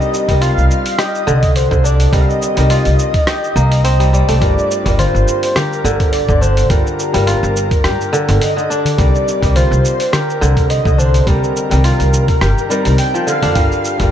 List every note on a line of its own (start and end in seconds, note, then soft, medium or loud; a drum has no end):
0.00 0.24 G3 medium
0.00 0.27 G3 medium
0.00 0.25 C4 medium
0.00 1.24 D4 medium
0.00 0.25 D#4 medium
0.00 0.11 G4 medium
0.00 0.25 A#4 medium
0.00 0.43 D#5 loud
0.00 shaker soft
0.14 shaker medium
0.27 0.48 C2 medium
0.27 2.09 G3 medium
0.27 1.32 G3 medium
0.27 2.10 C4 medium
0.27 2.10 D#5 medium
0.27 kick medium
0.27 open hi-hat soft
0.27 shaker soft
0.31 2.11 A#4 medium
0.41 1.93 F4 medium
0.41 1.00 F5 loud
0.41 open hi-hat medium
0.41 shaker soft
0.57 0.66 C2 medium
0.57 shaker soft
0.71 shaker medium
0.86 open hi-hat soft
0.86 shaker soft
0.98 2.40 G4 medium
0.98 1.57 D#5 loud
0.98 cross-stick medium
0.98 open hi-hat medium
0.98 shaker soft
1.15 shaker soft
1.27 1.64 C2 medium
1.27 1.70 D3 loud
1.27 shaker medium
1.43 kick medium
1.43 open hi-hat soft
1.43 shaker soft
1.56 1.86 C5 medium
1.56 open hi-hat medium
1.56 shaker soft
1.71 2.07 C2 loud
1.71 4.05 D3 medium
1.71 kick loud
1.71 shaker soft
1.84 3.52 D4 medium
1.84 2.14 D5 medium
1.84 shaker medium
2.00 open hi-hat soft
2.00 shaker soft
2.12 2.24 C2 loud
2.12 2.53 G3 medium
2.12 2.56 G3 medium
2.12 2.53 C4 medium
2.12 2.54 A#4 medium
2.12 2.22 D#5 loud
2.12 kick loud
2.12 open hi-hat medium
2.12 shaker soft
2.21 2.30 F5 medium
2.28 3.83 D#5 loud
2.28 shaker soft
2.42 shaker medium
2.55 2.76 C2 medium
2.55 4.37 G3 medium
2.55 3.99 G3 medium
2.55 4.38 C4 medium
2.55 4.39 D#4 medium
2.55 open hi-hat soft
2.55 shaker soft
2.59 4.39 A#4 medium
2.70 4.22 F4 medium
2.70 open hi-hat medium
2.70 shaker soft
2.85 2.95 C2 medium
2.85 open hi-hat soft
2.85 shaker soft
2.99 shaker medium
3.14 kick loud
3.14 open hi-hat soft
3.14 shaker soft
3.27 4.68 G4 medium
3.27 cross-stick medium
3.27 open hi-hat medium
3.27 shaker soft
3.44 shaker soft
3.56 4.21 C2 loud
3.56 4.34 A#3 medium
3.56 shaker medium
3.72 open hi-hat soft
3.72 shaker soft
3.84 5.64 C4 medium
3.84 4.14 D#5 loud
3.84 open hi-hat medium
3.84 shaker soft
4.00 4.12 G3 medium
4.00 open hi-hat soft
4.00 shaker soft
4.13 4.41 G3 medium
4.13 5.00 D5 loud
4.13 shaker medium
4.28 4.38 C2 medium
4.28 6.28 A3 medium
4.28 open hi-hat soft
4.28 shaker soft
4.40 4.53 G1 loud
4.40 4.81 G3 medium
4.40 4.85 G3 medium
4.40 4.82 D4 medium
4.40 4.82 F4 medium
4.40 4.82 A#4 medium
4.40 kick loud
4.40 open hi-hat medium
4.40 shaker soft
4.58 shaker soft
4.71 shaker medium
4.84 5.05 G1 medium
4.84 6.66 G3 medium
4.84 5.89 G3 medium
4.84 6.67 D4 medium
4.84 6.67 F4 medium
4.84 kick medium
4.84 open hi-hat soft
4.84 darbuka ka medium
4.84 darbuka tek medium
4.84 shaker soft
4.88 6.68 A#4 medium
4.98 6.50 F4 medium
4.98 5.57 C5 loud
4.98 open hi-hat medium
4.98 darbuka dum medium
4.98 shaker soft
5.14 5.23 G1 medium
5.14 darbuka tek medium
5.14 shaker soft
5.28 shaker medium
5.43 open hi-hat soft
5.43 shaker soft
5.56 6.98 G4 medium
5.56 6.11 A#4 loud
5.56 cross-stick medium
5.56 open hi-hat medium
5.56 darbuka dum medium
5.56 shaker soft
5.72 shaker soft
5.84 6.21 G1 medium
5.84 6.28 D3 loud
5.84 shaker medium
6.00 kick loud
6.00 open hi-hat soft
6.00 darbuka ka medium
6.00 shaker soft
6.12 6.42 D5 medium
6.12 open hi-hat medium
6.12 shaker soft
6.29 6.64 G1 loud
6.29 8.12 D3 medium
6.29 kick loud
6.29 shaker soft
6.40 8.09 D4 medium
6.40 6.71 C5 medium
6.40 darbuka ka medium
6.40 darbuka dum medium
6.40 shaker medium
6.57 open hi-hat soft
6.57 darbuka ka medium
6.57 shaker soft
6.69 6.81 G1 medium
6.69 7.10 G3 medium
6.69 7.13 G3 medium
6.69 7.10 D4 medium
6.69 7.11 F4 medium
6.69 8.41 A#4 loud
6.69 7.11 A#4 medium
6.69 kick loud
6.69 open hi-hat medium
6.69 shaker soft
6.87 shaker soft
6.99 shaker medium
7.12 7.33 G1 medium
7.12 8.95 G3 medium
7.12 8.18 G3 medium
7.12 8.95 D4 medium
7.12 8.96 F4 medium
7.12 open hi-hat soft
7.12 darbuka ka medium
7.12 darbuka tek medium
7.12 shaker soft
7.16 8.97 A#4 medium
7.27 8.78 F4 medium
7.27 open hi-hat medium
7.27 shaker soft
7.43 7.86 G1 medium
7.43 darbuka tek medium
7.43 shaker soft
7.56 shaker medium
7.71 kick loud
7.71 open hi-hat soft
7.71 shaker soft
7.84 7.95 G2 medium
7.84 9.25 G4 medium
7.84 cross-stick medium
7.84 open hi-hat medium
7.84 shaker soft
8.01 shaker soft
8.13 8.55 D3 loud
8.13 shaker medium
8.28 8.38 G1 loud
8.28 open hi-hat soft
8.28 darbuka ka medium
8.28 shaker soft
8.41 8.71 D#5 loud
8.41 open hi-hat medium
8.41 shaker medium
8.57 9.04 D3 medium
8.57 shaker soft
8.69 10.38 D4 medium
8.69 9.57 D5 loud
8.69 shaker medium
8.85 open hi-hat soft
8.85 darbuka dum medium
8.85 shaker soft
8.97 9.09 C2 loud
8.97 9.39 G3 medium
8.97 9.42 G3 medium
8.97 9.39 C4 medium
8.97 9.39 D#4 medium
8.97 9.39 A#4 medium
8.97 kick loud
8.97 open hi-hat medium
8.97 shaker soft
9.15 shaker soft
9.28 shaker medium
9.41 9.62 C2 medium
9.41 11.23 G3 medium
9.41 10.47 G3 medium
9.41 11.24 C4 medium
9.41 11.24 D#5 medium
9.41 kick medium
9.41 open hi-hat soft
9.41 darbuka ka medium
9.41 darbuka tek medium
9.41 shaker soft
9.45 11.25 A#4 medium
9.55 11.08 F4 medium
9.55 10.13 C5 loud
9.55 open hi-hat medium
9.55 darbuka dum medium
9.55 shaker soft
9.71 9.80 C2 medium
9.71 darbuka tek medium
9.71 shaker soft
9.85 shaker medium
10.00 open hi-hat soft
10.00 shaker soft
10.12 11.54 G4 medium
10.12 10.71 A#4 loud
10.12 cross-stick medium
10.12 open hi-hat medium
10.12 darbuka dum medium
10.12 shaker soft
10.30 shaker soft
10.41 10.78 C2 medium
10.41 10.84 D3 loud
10.41 shaker medium
10.57 kick loud
10.57 open hi-hat soft
10.57 darbuka ka medium
10.57 shaker soft
10.69 10.99 D#5 loud
10.69 open hi-hat medium
10.69 shaker medium
10.85 11.21 C2 medium
10.85 13.20 D3 medium
10.85 kick loud
10.85 shaker soft
10.97 12.66 D4 medium
10.97 11.26 C5 loud
10.97 darbuka ka medium
10.97 darbuka dum medium
10.97 shaker medium
11.14 open hi-hat soft
11.14 darbuka ka medium
11.14 shaker soft
11.26 11.38 C2 loud
11.26 11.67 G3 medium
11.26 11.70 G3 medium
11.26 11.68 C4 medium
11.26 12.94 A#4 loud
11.26 11.68 A#4 medium
11.26 kick loud
11.26 open hi-hat medium
11.26 shaker soft
11.44 shaker soft
11.57 shaker medium
11.69 11.91 C2 medium
11.69 12.68 D#3 medium
11.69 12.67 G3 medium
11.69 12.69 G3 medium
11.69 12.67 C4 medium
11.69 12.68 A#4 medium
11.69 open hi-hat soft
11.69 darbuka ka medium
11.69 darbuka tek medium
11.69 shaker soft
11.84 13.36 F4 medium
11.84 open hi-hat medium
11.84 shaker soft
11.99 12.43 C2 medium
11.99 open hi-hat soft
11.99 darbuka tek medium
11.99 shaker soft
12.13 shaker medium
12.28 kick loud
12.28 open hi-hat soft
12.28 shaker soft
12.41 12.53 G1 medium
12.41 13.83 G4 medium
12.41 cross-stick medium
12.41 open hi-hat medium
12.41 shaker soft
12.58 shaker soft
12.69 12.82 G3 medium
12.69 13.32 G3 medium
12.69 12.82 C4 medium
12.69 12.82 D#4 medium
12.69 12.83 A#4 loud
12.69 darbuka ka soft
12.69 shaker medium
12.84 12.95 C2 loud
12.84 13.52 G3 medium
12.84 13.52 C4 medium
12.84 13.53 D#4 medium
12.84 open hi-hat soft
12.84 darbuka ka medium
12.84 shaker soft
12.88 13.54 A#4 medium
12.98 13.25 G5 loud
12.98 open hi-hat medium
12.98 shaker soft
13.14 13.32 F3 medium
13.14 shaker soft
13.26 13.61 D3 medium
13.26 14.06 F5 loud
13.26 shaker medium
13.42 13.52 F2 medium
13.42 14.11 D4 loud
13.42 open hi-hat soft
13.42 darbuka dum medium
13.42 shaker soft
13.54 13.67 G1 loud
13.54 13.96 G3 medium
13.54 13.99 G3 medium
13.54 13.96 D4 medium
13.54 13.96 F4 medium
13.54 13.97 A#4 medium
13.54 kick loud
13.54 open hi-hat medium
13.54 shaker soft
13.72 shaker soft
13.85 shaker medium
13.98 14.11 G1 medium
13.98 14.11 D3 medium
13.98 14.11 G3 medium
13.98 14.11 F4 medium
13.98 14.11 A#4 medium
13.98 kick medium
13.98 open hi-hat soft
13.98 darbuka ka medium
13.98 darbuka tek medium
13.98 shaker soft
14.06 14.11 F5 medium